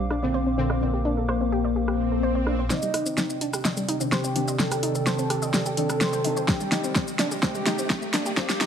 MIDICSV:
0, 0, Header, 1, 9, 480
1, 0, Start_track
1, 0, Tempo, 472441
1, 827, Time_signature, 4, 2, 24, 8
1, 8801, End_track
2, 0, Start_track
2, 0, Title_t, "Analog synth pad"
2, 0, Program_c, 0, 89
2, 0, Note_on_c, 0, 72, 78
2, 0, Note_on_c, 0, 77, 75
2, 0, Note_on_c, 0, 86, 90
2, 2706, Note_off_c, 0, 72, 0
2, 2706, Note_off_c, 0, 77, 0
2, 2706, Note_off_c, 0, 86, 0
2, 2747, Note_on_c, 0, 48, 78
2, 2747, Note_on_c, 0, 51, 74
2, 2747, Note_on_c, 0, 60, 75
2, 2747, Note_on_c, 0, 74, 76
2, 2747, Note_on_c, 0, 79, 88
2, 8801, Note_off_c, 0, 48, 0
2, 8801, Note_off_c, 0, 51, 0
2, 8801, Note_off_c, 0, 60, 0
2, 8801, Note_off_c, 0, 74, 0
2, 8801, Note_off_c, 0, 79, 0
2, 8801, End_track
3, 0, Start_track
3, 0, Title_t, "Analog synth lead"
3, 0, Program_c, 1, 81
3, 347, Note_on_c, 1, 60, 91
3, 828, Note_on_c, 1, 58, 102
3, 843, Note_off_c, 1, 60, 0
3, 2654, Note_off_c, 1, 58, 0
3, 2748, Note_on_c, 1, 63, 102
3, 3374, Note_off_c, 1, 63, 0
3, 4188, Note_on_c, 1, 67, 90
3, 4630, Note_off_c, 1, 67, 0
3, 4667, Note_on_c, 1, 69, 103
3, 6494, Note_off_c, 1, 69, 0
3, 6586, Note_on_c, 1, 67, 95
3, 7213, Note_off_c, 1, 67, 0
3, 7546, Note_on_c, 1, 67, 94
3, 8173, Note_off_c, 1, 67, 0
3, 8506, Note_on_c, 1, 67, 95
3, 8801, Note_off_c, 1, 67, 0
3, 8801, End_track
4, 0, Start_track
4, 0, Title_t, "Synth pluck"
4, 0, Program_c, 2, 84
4, 107, Note_on_c, 2, 62, 99
4, 173, Note_off_c, 2, 62, 0
4, 230, Note_on_c, 2, 60, 72
4, 324, Note_off_c, 2, 60, 0
4, 346, Note_on_c, 2, 72, 98
4, 445, Note_off_c, 2, 72, 0
4, 470, Note_on_c, 2, 60, 77
4, 532, Note_off_c, 2, 60, 0
4, 586, Note_on_c, 2, 60, 74
4, 685, Note_off_c, 2, 60, 0
4, 711, Note_on_c, 2, 74, 74
4, 773, Note_off_c, 2, 74, 0
4, 949, Note_on_c, 2, 67, 73
4, 987, Note_off_c, 2, 67, 0
4, 1067, Note_on_c, 2, 62, 98
4, 1133, Note_off_c, 2, 62, 0
4, 1189, Note_on_c, 2, 69, 70
4, 1252, Note_off_c, 2, 69, 0
4, 1306, Note_on_c, 2, 72, 97
4, 1405, Note_off_c, 2, 72, 0
4, 1429, Note_on_c, 2, 60, 75
4, 1523, Note_off_c, 2, 60, 0
4, 1547, Note_on_c, 2, 67, 97
4, 1613, Note_off_c, 2, 67, 0
4, 1671, Note_on_c, 2, 74, 76
4, 1733, Note_off_c, 2, 74, 0
4, 1787, Note_on_c, 2, 67, 78
4, 1826, Note_off_c, 2, 67, 0
4, 1911, Note_on_c, 2, 67, 75
4, 1948, Note_off_c, 2, 67, 0
4, 2151, Note_on_c, 2, 69, 73
4, 2213, Note_off_c, 2, 69, 0
4, 2268, Note_on_c, 2, 72, 100
4, 2366, Note_off_c, 2, 72, 0
4, 2391, Note_on_c, 2, 72, 75
4, 2453, Note_off_c, 2, 72, 0
4, 2507, Note_on_c, 2, 62, 73
4, 2606, Note_off_c, 2, 62, 0
4, 2630, Note_on_c, 2, 72, 72
4, 2668, Note_off_c, 2, 72, 0
4, 2747, Note_on_c, 2, 60, 95
4, 2846, Note_off_c, 2, 60, 0
4, 2870, Note_on_c, 2, 55, 71
4, 2932, Note_off_c, 2, 55, 0
4, 2986, Note_on_c, 2, 63, 96
4, 3052, Note_off_c, 2, 63, 0
4, 3109, Note_on_c, 2, 60, 77
4, 3203, Note_off_c, 2, 60, 0
4, 3226, Note_on_c, 2, 60, 81
4, 3325, Note_off_c, 2, 60, 0
4, 3467, Note_on_c, 2, 62, 96
4, 3533, Note_off_c, 2, 62, 0
4, 3589, Note_on_c, 2, 67, 74
4, 3683, Note_off_c, 2, 67, 0
4, 3705, Note_on_c, 2, 75, 78
4, 3772, Note_off_c, 2, 75, 0
4, 3829, Note_on_c, 2, 55, 74
4, 3892, Note_off_c, 2, 55, 0
4, 3947, Note_on_c, 2, 63, 96
4, 4013, Note_off_c, 2, 63, 0
4, 4070, Note_on_c, 2, 60, 71
4, 4164, Note_off_c, 2, 60, 0
4, 4187, Note_on_c, 2, 72, 106
4, 4286, Note_off_c, 2, 72, 0
4, 4310, Note_on_c, 2, 60, 75
4, 4373, Note_off_c, 2, 60, 0
4, 4426, Note_on_c, 2, 60, 77
4, 4525, Note_off_c, 2, 60, 0
4, 4550, Note_on_c, 2, 75, 74
4, 4612, Note_off_c, 2, 75, 0
4, 4791, Note_on_c, 2, 67, 74
4, 4828, Note_off_c, 2, 67, 0
4, 4907, Note_on_c, 2, 63, 95
4, 4973, Note_off_c, 2, 63, 0
4, 5030, Note_on_c, 2, 69, 74
4, 5092, Note_off_c, 2, 69, 0
4, 5147, Note_on_c, 2, 72, 97
4, 5246, Note_off_c, 2, 72, 0
4, 5270, Note_on_c, 2, 60, 75
4, 5364, Note_off_c, 2, 60, 0
4, 5386, Note_on_c, 2, 67, 100
4, 5452, Note_off_c, 2, 67, 0
4, 5509, Note_on_c, 2, 75, 75
4, 5572, Note_off_c, 2, 75, 0
4, 5626, Note_on_c, 2, 67, 79
4, 5666, Note_off_c, 2, 67, 0
4, 5750, Note_on_c, 2, 67, 74
4, 5788, Note_off_c, 2, 67, 0
4, 5989, Note_on_c, 2, 69, 74
4, 6052, Note_off_c, 2, 69, 0
4, 6106, Note_on_c, 2, 72, 104
4, 6205, Note_off_c, 2, 72, 0
4, 6229, Note_on_c, 2, 72, 81
4, 6292, Note_off_c, 2, 72, 0
4, 6346, Note_on_c, 2, 63, 73
4, 6445, Note_off_c, 2, 63, 0
4, 6469, Note_on_c, 2, 72, 74
4, 6507, Note_off_c, 2, 72, 0
4, 6586, Note_on_c, 2, 60, 94
4, 6685, Note_off_c, 2, 60, 0
4, 6709, Note_on_c, 2, 55, 71
4, 6772, Note_off_c, 2, 55, 0
4, 6826, Note_on_c, 2, 63, 88
4, 6892, Note_off_c, 2, 63, 0
4, 6951, Note_on_c, 2, 60, 69
4, 7044, Note_off_c, 2, 60, 0
4, 7067, Note_on_c, 2, 60, 77
4, 7166, Note_off_c, 2, 60, 0
4, 7307, Note_on_c, 2, 62, 91
4, 7373, Note_off_c, 2, 62, 0
4, 7430, Note_on_c, 2, 67, 70
4, 7524, Note_off_c, 2, 67, 0
4, 7547, Note_on_c, 2, 60, 95
4, 7646, Note_off_c, 2, 60, 0
4, 7671, Note_on_c, 2, 55, 72
4, 7733, Note_off_c, 2, 55, 0
4, 7786, Note_on_c, 2, 63, 98
4, 7852, Note_off_c, 2, 63, 0
4, 7910, Note_on_c, 2, 60, 69
4, 8004, Note_off_c, 2, 60, 0
4, 8027, Note_on_c, 2, 60, 77
4, 8126, Note_off_c, 2, 60, 0
4, 8266, Note_on_c, 2, 62, 97
4, 8332, Note_off_c, 2, 62, 0
4, 8390, Note_on_c, 2, 67, 73
4, 8484, Note_off_c, 2, 67, 0
4, 8508, Note_on_c, 2, 60, 100
4, 8606, Note_off_c, 2, 60, 0
4, 8631, Note_on_c, 2, 55, 77
4, 8693, Note_off_c, 2, 55, 0
4, 8748, Note_on_c, 2, 63, 97
4, 8801, Note_off_c, 2, 63, 0
4, 8801, End_track
5, 0, Start_track
5, 0, Title_t, "Synth stab"
5, 0, Program_c, 3, 62
5, 0, Note_on_c, 3, 46, 77
5, 0, Note_on_c, 3, 50, 71
5, 0, Note_on_c, 3, 60, 82
5, 199, Note_off_c, 3, 60, 0
5, 200, Note_off_c, 3, 46, 0
5, 200, Note_off_c, 3, 50, 0
5, 229, Note_on_c, 3, 46, 75
5, 229, Note_on_c, 3, 50, 70
5, 229, Note_on_c, 3, 60, 81
5, 558, Note_off_c, 3, 46, 0
5, 558, Note_off_c, 3, 50, 0
5, 558, Note_off_c, 3, 60, 0
5, 586, Note_on_c, 3, 46, 90
5, 586, Note_on_c, 3, 50, 87
5, 586, Note_on_c, 3, 60, 96
5, 798, Note_off_c, 3, 46, 0
5, 798, Note_off_c, 3, 50, 0
5, 798, Note_off_c, 3, 60, 0
5, 826, Note_on_c, 3, 46, 70
5, 826, Note_on_c, 3, 50, 64
5, 826, Note_on_c, 3, 60, 78
5, 1998, Note_off_c, 3, 46, 0
5, 1998, Note_off_c, 3, 50, 0
5, 1998, Note_off_c, 3, 60, 0
5, 2746, Note_on_c, 3, 48, 75
5, 2746, Note_on_c, 3, 51, 68
5, 2746, Note_on_c, 3, 74, 85
5, 4040, Note_off_c, 3, 48, 0
5, 4040, Note_off_c, 3, 51, 0
5, 4040, Note_off_c, 3, 74, 0
5, 4069, Note_on_c, 3, 48, 73
5, 4069, Note_on_c, 3, 51, 72
5, 4069, Note_on_c, 3, 62, 82
5, 4398, Note_off_c, 3, 48, 0
5, 4398, Note_off_c, 3, 51, 0
5, 4398, Note_off_c, 3, 62, 0
5, 4426, Note_on_c, 3, 48, 93
5, 4426, Note_on_c, 3, 51, 84
5, 4426, Note_on_c, 3, 62, 101
5, 4638, Note_off_c, 3, 48, 0
5, 4638, Note_off_c, 3, 51, 0
5, 4638, Note_off_c, 3, 62, 0
5, 4665, Note_on_c, 3, 48, 72
5, 4665, Note_on_c, 3, 51, 64
5, 4665, Note_on_c, 3, 62, 77
5, 5838, Note_off_c, 3, 48, 0
5, 5838, Note_off_c, 3, 51, 0
5, 5838, Note_off_c, 3, 62, 0
5, 5865, Note_on_c, 3, 51, 80
5, 5866, Note_on_c, 3, 48, 91
5, 5866, Note_on_c, 3, 62, 104
5, 6318, Note_off_c, 3, 48, 0
5, 6318, Note_off_c, 3, 51, 0
5, 6318, Note_off_c, 3, 62, 0
5, 6345, Note_on_c, 3, 48, 82
5, 6346, Note_on_c, 3, 51, 77
5, 6346, Note_on_c, 3, 62, 91
5, 6558, Note_off_c, 3, 48, 0
5, 6558, Note_off_c, 3, 51, 0
5, 6558, Note_off_c, 3, 62, 0
5, 6584, Note_on_c, 3, 48, 70
5, 6585, Note_on_c, 3, 51, 64
5, 6585, Note_on_c, 3, 62, 80
5, 7527, Note_off_c, 3, 48, 0
5, 7527, Note_off_c, 3, 51, 0
5, 7527, Note_off_c, 3, 62, 0
5, 7545, Note_on_c, 3, 51, 73
5, 7546, Note_on_c, 3, 48, 80
5, 7546, Note_on_c, 3, 62, 85
5, 8487, Note_off_c, 3, 51, 0
5, 8487, Note_off_c, 3, 62, 0
5, 8488, Note_off_c, 3, 48, 0
5, 8505, Note_on_c, 3, 48, 80
5, 8505, Note_on_c, 3, 51, 72
5, 8505, Note_on_c, 3, 62, 85
5, 8801, Note_off_c, 3, 48, 0
5, 8801, Note_off_c, 3, 51, 0
5, 8801, Note_off_c, 3, 62, 0
5, 8801, End_track
6, 0, Start_track
6, 0, Title_t, "Detuned saw bass"
6, 0, Program_c, 4, 39
6, 0, Note_on_c, 4, 34, 82
6, 2723, Note_off_c, 4, 34, 0
6, 8801, End_track
7, 0, Start_track
7, 0, Title_t, "Riser"
7, 0, Program_c, 5, 103
7, 2746, Note_on_c, 5, 60, 73
7, 8801, Note_off_c, 5, 60, 0
7, 8801, End_track
8, 0, Start_track
8, 0, Title_t, "Swell"
8, 0, Program_c, 6, 103
8, 1786, Note_on_c, 6, 60, 72
8, 2747, Note_off_c, 6, 60, 0
8, 8801, End_track
9, 0, Start_track
9, 0, Title_t, "Drums"
9, 106, Note_on_c, 9, 37, 51
9, 208, Note_off_c, 9, 37, 0
9, 709, Note_on_c, 9, 37, 53
9, 810, Note_off_c, 9, 37, 0
9, 1306, Note_on_c, 9, 37, 51
9, 1408, Note_off_c, 9, 37, 0
9, 1910, Note_on_c, 9, 37, 52
9, 2011, Note_off_c, 9, 37, 0
9, 2506, Note_on_c, 9, 37, 52
9, 2607, Note_off_c, 9, 37, 0
9, 2746, Note_on_c, 9, 38, 44
9, 2746, Note_on_c, 9, 82, 55
9, 2847, Note_off_c, 9, 38, 0
9, 2847, Note_off_c, 9, 82, 0
9, 2869, Note_on_c, 9, 82, 57
9, 2970, Note_off_c, 9, 82, 0
9, 2987, Note_on_c, 9, 37, 46
9, 2987, Note_on_c, 9, 46, 98
9, 3088, Note_off_c, 9, 37, 0
9, 3088, Note_off_c, 9, 46, 0
9, 3110, Note_on_c, 9, 82, 56
9, 3211, Note_off_c, 9, 82, 0
9, 3227, Note_on_c, 9, 38, 46
9, 3227, Note_on_c, 9, 82, 54
9, 3328, Note_off_c, 9, 38, 0
9, 3328, Note_off_c, 9, 82, 0
9, 3350, Note_on_c, 9, 82, 54
9, 3451, Note_off_c, 9, 82, 0
9, 3467, Note_on_c, 9, 46, 100
9, 3568, Note_off_c, 9, 46, 0
9, 3590, Note_on_c, 9, 37, 51
9, 3590, Note_on_c, 9, 82, 57
9, 3691, Note_off_c, 9, 37, 0
9, 3691, Note_off_c, 9, 82, 0
9, 3707, Note_on_c, 9, 38, 52
9, 3707, Note_on_c, 9, 82, 58
9, 3808, Note_off_c, 9, 38, 0
9, 3808, Note_off_c, 9, 82, 0
9, 3831, Note_on_c, 9, 82, 57
9, 3932, Note_off_c, 9, 82, 0
9, 3947, Note_on_c, 9, 46, 104
9, 4049, Note_off_c, 9, 46, 0
9, 4070, Note_on_c, 9, 82, 59
9, 4172, Note_off_c, 9, 82, 0
9, 4187, Note_on_c, 9, 37, 50
9, 4187, Note_on_c, 9, 38, 55
9, 4187, Note_on_c, 9, 82, 56
9, 4289, Note_off_c, 9, 37, 0
9, 4289, Note_off_c, 9, 38, 0
9, 4289, Note_off_c, 9, 82, 0
9, 4310, Note_on_c, 9, 82, 55
9, 4411, Note_off_c, 9, 82, 0
9, 4427, Note_on_c, 9, 46, 106
9, 4528, Note_off_c, 9, 46, 0
9, 4550, Note_on_c, 9, 82, 58
9, 4652, Note_off_c, 9, 82, 0
9, 4667, Note_on_c, 9, 38, 58
9, 4667, Note_on_c, 9, 82, 53
9, 4768, Note_off_c, 9, 38, 0
9, 4768, Note_off_c, 9, 82, 0
9, 4791, Note_on_c, 9, 37, 50
9, 4791, Note_on_c, 9, 46, 65
9, 4791, Note_on_c, 9, 82, 54
9, 4892, Note_off_c, 9, 37, 0
9, 4892, Note_off_c, 9, 46, 0
9, 4892, Note_off_c, 9, 82, 0
9, 4906, Note_on_c, 9, 46, 105
9, 5008, Note_off_c, 9, 46, 0
9, 5029, Note_on_c, 9, 82, 52
9, 5131, Note_off_c, 9, 82, 0
9, 5147, Note_on_c, 9, 38, 58
9, 5147, Note_on_c, 9, 82, 53
9, 5249, Note_off_c, 9, 38, 0
9, 5249, Note_off_c, 9, 82, 0
9, 5270, Note_on_c, 9, 82, 54
9, 5371, Note_off_c, 9, 82, 0
9, 5386, Note_on_c, 9, 37, 51
9, 5386, Note_on_c, 9, 46, 105
9, 5488, Note_off_c, 9, 37, 0
9, 5488, Note_off_c, 9, 46, 0
9, 5509, Note_on_c, 9, 82, 54
9, 5610, Note_off_c, 9, 82, 0
9, 5625, Note_on_c, 9, 38, 64
9, 5625, Note_on_c, 9, 82, 55
9, 5727, Note_off_c, 9, 38, 0
9, 5727, Note_off_c, 9, 82, 0
9, 5749, Note_on_c, 9, 82, 58
9, 5850, Note_off_c, 9, 82, 0
9, 5866, Note_on_c, 9, 46, 107
9, 5967, Note_off_c, 9, 46, 0
9, 5990, Note_on_c, 9, 37, 53
9, 5990, Note_on_c, 9, 82, 59
9, 6091, Note_off_c, 9, 37, 0
9, 6091, Note_off_c, 9, 82, 0
9, 6105, Note_on_c, 9, 38, 69
9, 6105, Note_on_c, 9, 82, 53
9, 6207, Note_off_c, 9, 38, 0
9, 6207, Note_off_c, 9, 82, 0
9, 6229, Note_on_c, 9, 82, 56
9, 6330, Note_off_c, 9, 82, 0
9, 6345, Note_on_c, 9, 46, 103
9, 6446, Note_off_c, 9, 46, 0
9, 6468, Note_on_c, 9, 82, 58
9, 6570, Note_off_c, 9, 82, 0
9, 6586, Note_on_c, 9, 36, 125
9, 6586, Note_on_c, 9, 38, 74
9, 6586, Note_on_c, 9, 82, 52
9, 6687, Note_off_c, 9, 38, 0
9, 6687, Note_off_c, 9, 82, 0
9, 6688, Note_off_c, 9, 36, 0
9, 6709, Note_on_c, 9, 82, 54
9, 6810, Note_off_c, 9, 82, 0
9, 6825, Note_on_c, 9, 38, 71
9, 6825, Note_on_c, 9, 46, 106
9, 6927, Note_off_c, 9, 38, 0
9, 6927, Note_off_c, 9, 46, 0
9, 6948, Note_on_c, 9, 82, 55
9, 7050, Note_off_c, 9, 82, 0
9, 7065, Note_on_c, 9, 38, 78
9, 7065, Note_on_c, 9, 82, 53
9, 7066, Note_on_c, 9, 36, 123
9, 7166, Note_off_c, 9, 38, 0
9, 7166, Note_off_c, 9, 82, 0
9, 7168, Note_off_c, 9, 36, 0
9, 7189, Note_on_c, 9, 82, 57
9, 7290, Note_off_c, 9, 82, 0
9, 7305, Note_on_c, 9, 38, 79
9, 7305, Note_on_c, 9, 46, 113
9, 7407, Note_off_c, 9, 38, 0
9, 7407, Note_off_c, 9, 46, 0
9, 7429, Note_on_c, 9, 82, 56
9, 7531, Note_off_c, 9, 82, 0
9, 7546, Note_on_c, 9, 36, 118
9, 7546, Note_on_c, 9, 38, 83
9, 7546, Note_on_c, 9, 82, 54
9, 7647, Note_off_c, 9, 36, 0
9, 7648, Note_off_c, 9, 38, 0
9, 7648, Note_off_c, 9, 82, 0
9, 7669, Note_on_c, 9, 82, 58
9, 7771, Note_off_c, 9, 82, 0
9, 7787, Note_on_c, 9, 38, 86
9, 7787, Note_on_c, 9, 46, 111
9, 7888, Note_off_c, 9, 38, 0
9, 7888, Note_off_c, 9, 46, 0
9, 7910, Note_on_c, 9, 82, 57
9, 8011, Note_off_c, 9, 82, 0
9, 8025, Note_on_c, 9, 36, 121
9, 8026, Note_on_c, 9, 38, 86
9, 8026, Note_on_c, 9, 82, 58
9, 8127, Note_off_c, 9, 36, 0
9, 8128, Note_off_c, 9, 38, 0
9, 8128, Note_off_c, 9, 82, 0
9, 8150, Note_on_c, 9, 82, 53
9, 8251, Note_off_c, 9, 82, 0
9, 8267, Note_on_c, 9, 38, 92
9, 8267, Note_on_c, 9, 46, 116
9, 8368, Note_off_c, 9, 38, 0
9, 8368, Note_off_c, 9, 46, 0
9, 8390, Note_on_c, 9, 82, 56
9, 8492, Note_off_c, 9, 82, 0
9, 8505, Note_on_c, 9, 36, 124
9, 8506, Note_on_c, 9, 38, 92
9, 8506, Note_on_c, 9, 82, 53
9, 8607, Note_off_c, 9, 36, 0
9, 8608, Note_off_c, 9, 38, 0
9, 8608, Note_off_c, 9, 82, 0
9, 8630, Note_on_c, 9, 38, 82
9, 8630, Note_on_c, 9, 46, 63
9, 8630, Note_on_c, 9, 82, 54
9, 8732, Note_off_c, 9, 38, 0
9, 8732, Note_off_c, 9, 46, 0
9, 8732, Note_off_c, 9, 82, 0
9, 8746, Note_on_c, 9, 38, 96
9, 8746, Note_on_c, 9, 46, 102
9, 8801, Note_off_c, 9, 38, 0
9, 8801, Note_off_c, 9, 46, 0
9, 8801, End_track
0, 0, End_of_file